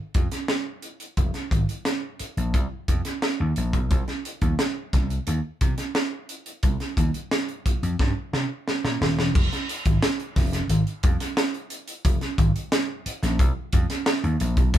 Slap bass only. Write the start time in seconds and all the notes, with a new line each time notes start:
0.15 F2
1.17 F1
1.51 G#1
2.20 muted slap bass stroke
2.37 A#1
2.54 C2
2.88 F2
3.40 D#2
3.57 A#1
3.73 B1
3.91 C2
4.42 D#2
4.93 C2
5.27 D#2
5.61 C3
6.63 C2
6.97 D#2
7.66 muted slap bass stroke
7.83 F2
8.00 G2
8.33 C3
8.84 A#2
9.01 D#1
9.18 E1
9.35 F1
9.86 G#1
10.36 F1
10.69 G#1
11.04 F2
12.05 F1
12.38 G#1
13.06 muted slap bass stroke
13.23 A#1
13.39 C2
13.73 F2
14.24 D#2
14.40 A#1
14.57 B1
14.74 C2